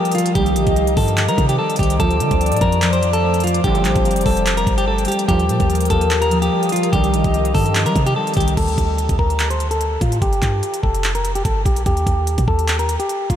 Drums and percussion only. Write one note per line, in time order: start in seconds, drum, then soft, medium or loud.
0.05 closed hi-hat medium
0.12 closed hi-hat medium
0.15 closed hi-hat medium
0.18 closed hi-hat medium
0.26 closed hi-hat medium
0.35 kick loud
0.35 closed hi-hat medium
0.46 closed hi-hat medium
0.56 closed hi-hat medium
0.67 kick loud
0.67 closed hi-hat medium
0.76 closed hi-hat medium
0.87 closed hi-hat medium
0.97 kick loud
0.97 open hi-hat medium
1.08 closed hi-hat medium
1.17 clap loud
1.17 closed hi-hat medium
1.28 closed hi-hat medium
1.38 kick loud
1.38 closed hi-hat medium
1.49 closed hi-hat medium
1.70 closed hi-hat medium
1.76 kick loud
1.76 closed hi-hat medium
1.79 closed hi-hat medium
1.83 closed hi-hat medium
1.90 closed hi-hat medium
2.00 kick loud
2.00 closed hi-hat medium
2.11 closed hi-hat medium
2.20 closed hi-hat medium
2.31 kick loud
2.31 closed hi-hat medium
2.41 closed hi-hat medium
2.46 closed hi-hat medium
2.52 closed hi-hat medium
2.56 closed hi-hat medium
2.61 kick loud
2.61 closed hi-hat medium
2.72 closed hi-hat medium
2.82 clap loud
2.82 closed hi-hat medium
2.93 closed hi-hat medium
3.03 closed hi-hat medium
3.13 closed hi-hat medium
3.34 closed hi-hat medium
3.40 closed hi-hat medium
3.44 closed hi-hat medium
3.47 closed hi-hat medium
3.54 closed hi-hat medium
3.64 kick loud
3.64 closed hi-hat medium
3.75 closed hi-hat medium
3.85 clap medium
3.85 closed hi-hat medium
3.96 kick loud
3.96 closed hi-hat medium
4.05 closed hi-hat medium
4.11 closed hi-hat medium
4.16 closed hi-hat medium
4.21 closed hi-hat medium
4.26 kick medium
4.26 open hi-hat medium
4.37 closed hi-hat medium
4.46 clap loud
4.46 closed hi-hat medium
4.57 closed hi-hat medium
4.67 kick loud
4.67 closed hi-hat medium
4.78 closed hi-hat medium
4.98 closed hi-hat medium
5.05 closed hi-hat medium
5.08 closed hi-hat medium
5.12 closed hi-hat medium
5.19 closed hi-hat medium
5.29 kick loud
5.29 closed hi-hat medium
5.39 closed hi-hat medium
5.49 closed hi-hat medium
5.60 kick loud
5.60 closed hi-hat medium
5.70 closed hi-hat medium
5.75 closed hi-hat medium
5.81 closed hi-hat medium
5.85 closed hi-hat medium
5.90 kick loud
5.90 closed hi-hat medium
6.01 closed hi-hat medium
6.11 clap loud
6.11 closed hi-hat medium
6.22 closed hi-hat medium
6.31 closed hi-hat medium
6.42 closed hi-hat medium
6.63 closed hi-hat medium
6.69 closed hi-hat medium
6.72 closed hi-hat medium
6.76 closed hi-hat medium
6.83 closed hi-hat medium
6.93 kick loud
6.93 closed hi-hat medium
7.04 closed hi-hat medium
7.14 closed hi-hat medium
7.24 kick loud
7.24 closed hi-hat medium
7.34 closed hi-hat medium
7.45 closed hi-hat medium
7.54 kick medium
7.54 open hi-hat medium
7.66 closed hi-hat medium
7.75 clap loud
7.75 closed hi-hat medium
7.86 closed hi-hat medium
7.96 kick loud
7.96 closed hi-hat medium
8.06 closed hi-hat medium
8.27 closed hi-hat medium
8.34 kick loud
8.34 closed hi-hat medium
8.37 closed hi-hat medium
8.40 closed hi-hat medium
8.48 closed hi-hat medium
8.57 kick loud
8.57 closed hi-hat medium
8.57 crash loud
8.68 closed hi-hat medium
8.78 kick medium
8.78 closed hi-hat medium
8.98 closed hi-hat medium
9.09 kick loud
9.09 closed hi-hat medium
9.19 kick loud
9.30 closed hi-hat medium
9.39 clap loud
9.39 closed hi-hat medium
9.51 closed hi-hat medium
9.60 closed hi-hat medium
9.71 closed hi-hat medium
9.81 closed hi-hat medium
10.01 kick loud
10.01 closed hi-hat medium
10.12 closed hi-hat medium
10.22 kick loud
10.22 closed hi-hat medium
10.33 closed hi-hat medium
10.42 kick medium
10.42 clap medium
10.42 closed hi-hat medium
10.63 closed hi-hat medium
10.74 closed hi-hat medium
10.83 kick medium
10.95 closed hi-hat medium
11.04 clap loud
11.04 closed hi-hat medium
11.15 closed hi-hat medium
11.25 closed hi-hat medium
11.35 closed hi-hat medium
11.45 kick medium
11.45 closed hi-hat medium
11.66 kick medium
11.66 closed hi-hat medium
11.76 closed hi-hat medium
11.86 kick loud
11.86 closed hi-hat medium
11.97 closed hi-hat medium
12.07 kick medium
12.07 closed hi-hat medium
12.27 closed hi-hat medium
12.38 kick loud
12.38 closed hi-hat medium
12.48 kick medium
12.59 closed hi-hat medium
12.68 clap loud
12.68 closed hi-hat medium
12.79 closed hi-hat medium
12.89 closed hi-hat medium
13.00 closed hi-hat medium
13.09 closed hi-hat medium
13.30 kick loud
13.30 closed hi-hat medium